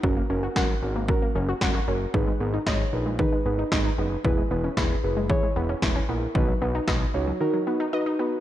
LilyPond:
<<
  \new Staff \with { instrumentName = "Synth keys" } { \time 4/4 \key gis \minor \tempo 4 = 114 <cis' fis' ais'>8 <cis' fis' ais'>8 <cis' fis' ais'>8 <cis' fis' ais'>8 <cis' fis' ais'>8 <cis' fis' ais'>8 <cis' fis' ais'>8 <cis' fis' ais'>8 | <dis' gis' b'>8 <dis' gis' ais'>8 <dis' gis' cis''>8 <dis' gis' b'>8 <dis' gis' b'>8 <dis' gis' b'>8 <dis' gis' b'>8 <dis' gis' b'>8 | <e' gis' b'>8 <e' gis' b'>8 <e' gis' b'>8 <e' gis' b'>8 <e' gis' cis''>8 <e' gis' b'>8 <e' gis' b'>8 <e' gis' ais'>8 | <dis' fis' b'>8 <dis' fis' b'>8 <dis' fis' b'>8 <dis' fis' cis''>8 <dis' fis' ais'>8 <dis' fis' b'>8 <dis' fis' b'>8 <dis' fis' b'>8 | }
  \new Staff \with { instrumentName = "Synth arpeggio sound" } { \time 4/4 \key gis \minor fis16 ais16 cis'16 fis'16 fis''16 r8 ais16 fis16 ais16 cis'16 fis'16 fis''16 fis'16 cis'16 r16 | dis16 gis16 b16 dis'16 dis''16 r8 gis16 dis16 gis16 b16 dis'16 dis''16 dis'16 b16 r16 | e16 gis16 b16 cis'16 e'16 r8 gis16 e16 gis16 b16 cis'16 e'16 cis'16 b16 r16 | dis16 fis16 b16 dis'16 dis''16 r8 fis16 dis16 fis16 b16 dis'16 dis''16 dis'16 b16 r16 | }
  \new Staff \with { instrumentName = "Analog synth bass" } { \clef bass \time 4/4 \key gis \minor fis,,8 fis,,8 fis,,8 gis,,8. r16 fis,,8 fis,,8 fis,,8 | gis,,8 gis,,8 gis,,8 ais,,8. r16 gis,,8 gis,,8 fis,,8 | e,,8 e,,8 e,,8 fis,,8. r16 e,,8 e,,8 ais,,8 | b,,8 b,,8 b,,8 cis,8 r2 | }
  \new DrumStaff \with { instrumentName = "Drums" } \drummode { \time 4/4 bd4 <bd sn>4 bd4 <bd sn>4 | bd4 <bd sn>4 bd4 <bd sn>4 | bd4 <bd sn>4 bd4 <bd sn>4 | bd4 <bd sn>4 r4 r4 | }
>>